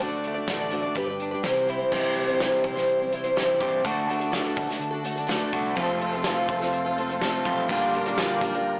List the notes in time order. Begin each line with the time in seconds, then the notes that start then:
0.00 D2 D3 A3 D4 F#4 D5, kick
0.24 A3, closed hi-hat
0.34 D4 F#4 D5
0.47 A1 D3 A3 D4 F#4 D5, kick, snare, closed hi-hat
0.70 D3 A3 D4 F#4 D5, closed hi-hat
0.82 F#4 D5
0.86 D4
0.95 G1 G2 G3 D4 G4 B4, kick, closed hi-hat
1.07 D4 G4 B4
1.20 D4, closed hi-hat
1.31 D4 G4 B4
1.43 C2 C3 E3 G3 C4 E4 C5, kick, snare, closed hi-hat
1.67 G3 C4 E4 C5, closed hi-hat
1.78 G3 C4 E4 C5
1.92 C2 C3 E3 G3 C4 E4 C5, kick, crash
1.96 G4
2.16 G3 C4 E4 C5, closed hi-hat
2.28 C4 E4 C5, closed hi-hat
2.32 G3
2.40 C3 E3 G3 C4 E4 C5, snare, closed hi-hat
2.64 C2 G3 C4 E4 C5, kick, closed hi-hat
2.75 G3 C4 E4 C5, snare, closed hi-hat
2.89 closed hi-hat
3.00 G3 C4 E4 C5
3.12 G3 C4 E4 C5, closed hi-hat
3.24 G3 C4 E4 C5, closed hi-hat
3.36 C3 E3 G3 C4 E4 C5, snare, closed hi-hat
3.60 G2 C3 E3 G3 C4 G4, kick, closed hi-hat
3.83 D2 D3 A3 D4 F#4 A4, kick, closed hi-hat
4.07 A3 D4 F#4 A4, closed hi-hat
4.20 F#4 A4, closed hi-hat
4.24 D4
4.32 D3 A3 D4 F#4 A4, snare, closed hi-hat
4.55 D2 A3 D4 F#4 A4, kick, closed hi-hat
4.67 D4 F#4 A4, snare, closed hi-hat
4.80 D3, closed hi-hat
4.91 D4 F#4 A4
5.04 A3 D4 F#4 A4, closed hi-hat
5.16 D4 F#4 A4, closed hi-hat
5.27 D3 A3 D4 F#4 A4, snare, closed hi-hat
5.53 C2 D3 A3 D4 F#4, kick, closed hi-hat
5.66 closed hi-hat
5.75 F2 C3 F3 A3 C4 F4 A4 C5, kick, closed hi-hat
5.88 C4 F4 A4
6.01 A3 C4 F4 A4, closed hi-hat
6.12 F4 A4, closed hi-hat
6.17 C4
6.24 F3 A3 C4 F4, snare, closed hi-hat
6.28 A4
6.49 F2 A3 C4 F4 A4, kick, closed hi-hat
6.60 C4 F4 A4, snare, closed hi-hat
6.73 closed hi-hat
6.85 C4 F4 A4
6.97 A3 C4 F4 A4, closed hi-hat
7.09 C4 F4 A4, closed hi-hat
7.21 F3 A3 C4 F4 A4, snare, closed hi-hat
7.45 B1 F2 C3 F3 A3 C4 F4, kick, closed hi-hat
7.68 A#1 A#2 D3 G3 D4 F4 G4 A#4, kick, closed hi-hat
7.73 F4
7.94 G3 D4 F4 A#4, closed hi-hat
8.06 G3 D4 F4 A#4, closed hi-hat
8.18 A#2 D3 G3 D4 F4 A#4, snare, closed hi-hat
8.41 A#1 G3 D4 F4 A#4, kick, closed hi-hat
8.54 D4 F4 A#4, closed hi-hat
8.58 G3